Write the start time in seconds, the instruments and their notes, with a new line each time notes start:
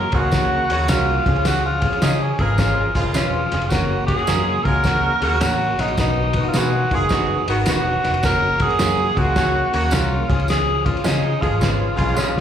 Already playing: tonewheel organ C#3 A#3 F#4, tenor saxophone A#4
0.12 fingered electric bass C#2, horn section G#3 F4 G#4, upright piano C#4 F#4 A#4, tenor saxophone F#4, kick, ride
0.32 horn section C#3 F#3 A#3 F#4, upright piano C#4 F#4 A#4, kick, snare, ride, tambourine
0.69 fingered electric bass D#2, horn section C#3 F#3 A#3 F#4, upright piano C#4 F#4 C#5, ride
0.88 fingered electric bass C2, clean electric guitar C#4 F#4 A#4, upright piano C#4 F#4 A#4, tenor saxophone F4, snare, ride, tambourine
1.25 fingered electric bass C#2, upright piano C#3 C#4 F4 G#4, tonewheel organ F3 C#4 G#4, kick, snare, ride
1.36 ride
1.45 tenor saxophone F#4, snare, ride, tambourine
1.66 tenor saxophone F4
1.82 horn section C#3 F3 G#3 F4, upright piano C#4 F4 G#4, kick, ride
1.93 ride
2.01 fingered electric bass C#3, horn section F3 G#3 C#4 G#4, clean electric guitar G#3 C#4 F4, upright piano C#4 F4 G#4, tenor saxophone D#4, snare, ride, tambourine
2.23 tenor saxophone C#4
2.38 fingered electric bass G#1, horn section F3 G#3 C#4 G#4, upright piano C#4 F4 B4, tenor saxophone A#4, kick, ride
2.58 horn section C#3 F3 G#3 F4, upright piano C#4 F4 G#4, kick, snare, ride, tambourine
2.95 fingered electric bass F1, horn section C#3 F3 G#3 F4, upright piano C#4 F4 A#4, kick, ride
3.14 fingered electric bass E1, clean electric guitar G#3 C#4 F4, upright piano C#4 F4 B4, tenor saxophone F4, snare, ride, tambourine
3.52 fingered electric bass F1, upright piano C#4 F4 G#4, snare, ride
3.61 ride
3.70 fingered electric bass F#1, tonewheel organ C#3 A#3 F#4, upright piano C#4 F#4 A#4, tenor saxophone F#4, kick, snare, ride, tambourine
4.07 horn section C#3 F#3 A#3 F#4, upright piano C#4 F#4 A#4, tenor saxophone G#4, kick, ride
4.19 ride
4.27 fingered electric bass F#2, horn section G#3 F4 G#4, upright piano C#4 F#4 G#4, clean electric guitar C#4 F#4 A#4, snare, ride, tambourine
4.64 fingered electric bass C#2, horn section G#3 F4 G#4, upright piano C#4 F#4 A#4, tenor saxophone A#4, kick, ride
4.84 horn section C#3 F#3 A#3 F#4, upright piano C#4 F#4 A#4, kick, snare, ride, tambourine
5.20 fingered electric bass D#2, horn section C#3 F#3 A#3 F#4, upright piano C#4 F#4 G#4, ride
5.40 fingered electric bass A1, upright piano C#4 F#4 A#4, clean electric guitar C#4 F#4 A#4, tenor saxophone F#4, snare, ride, tambourine
5.78 fingered electric bass A#1, upright piano C#4 F#4 A#4, tenor saxophone D#4, snare, ride
5.88 ride
5.97 fingered electric bass B1, upright piano B2 D#4 F#4 B4, tonewheel organ D#3 B3 F#4, tenor saxophone D#4, kick, snare, ride, tambourine
6.33 horn section D#3 F#3 B3 F#4, upright piano D#4 F#4 B4, kick, ride
6.48 tenor saxophone F4
6.53 fingered electric bass B2, horn section G#3 F4 G#4, upright piano D#4 F#4 B4, clean electric guitar D#4 F#4 B4, snare, ride, tambourine
6.59 tenor saxophone F#4
6.91 fingered electric bass F#1, horn section G#3 F4 G#4, upright piano D#4 F#4 A#4, kick, ride
6.95 tenor saxophone G#4
7.09 horn section D#3 F#3 B3 F#4, upright piano D#4 F#4 B4, kick, snare, ride, tambourine
7.46 fingered electric bass G#1, horn section D#3 F#3 B3 F#4, upright piano D#4 F#4 B4, ride
7.65 fingered electric bass E1, upright piano D#4 F#4 B4, clean electric guitar D#4 F#4 B4, tenor saxophone F#4, snare, ride, tambourine
8.03 fingered electric bass F1, upright piano D#4 F#4 B4, snare, ride
8.14 ride
8.22 fingered electric bass F#1, tonewheel organ C#3 A#3, upright piano C#4 F#4 A#4, tenor saxophone A#4, kick, snare, ride, tambourine
8.60 horn section C#3 F#3 A#3 F#4, upright piano C#4 F#4 A#4, tenor saxophone G#4, kick, ride
8.70 ride
8.79 fingered electric bass F#2, horn section G#3 F4 G#4, clean electric guitar C#4 F#4 A#4, upright piano C#4 F#4 A#4, snare, ride, tambourine
9.16 fingered electric bass C#2, horn section G#3 F4 G#4, upright piano C#4 F#4 A#4, tenor saxophone F#4, kick, ride
9.35 horn section C#3 F#3 A#3 F#4, upright piano C#4 F#4 G#4, kick, snare, ride, tambourine
9.72 fingered electric bass D#2, horn section C#3 F#3 A#3 F#4, upright piano C#4 F#4 A#4, ride
9.91 fingered electric bass C2, upright piano C#4 F#4 A#4, clean electric guitar C#4 F#4 A#4, tenor saxophone F4, snare, ride, tambourine
10.28 fingered electric bass C#2, upright piano C#3 C#4 F4 G#4, tonewheel organ F3 C#4 G#4, kick, snare, ride
10.39 ride
10.48 tenor saxophone G#4, snare, ride, tambourine
10.85 horn section C#3 F3 G#3 F4, upright piano C#4 F4 G#4, tenor saxophone F4, kick, ride
10.97 ride
11.04 fingered electric bass C#3, horn section F3 G#3 C#4 G#4, clean electric guitar G#3 C#4 F4, upright piano C#4 F4 G#4, tenor saxophone D#4, snare, ride, tambourine
11.41 fingered electric bass G#1, horn section F3 G#3 C#4 G#4, upright piano C#4 F4 G#4, tenor saxophone F4, kick, ride
11.60 horn section C#3 F3 G#3 F4, upright piano C#4 F4 B4, kick, snare, ride, tambourine
11.96 fingered electric bass B1, horn section C#3 F3 G#3 F4, upright piano C#4, kick, ride
12.00 upright piano F4 G#4
12.13 clean electric guitar G#3, tenor saxophone F#4, tambourine
12.17 upright piano C#4 F4 G#4, clean electric guitar C#4 F4, tenor saxophone F4, snare
12.36 fingered electric bass C#2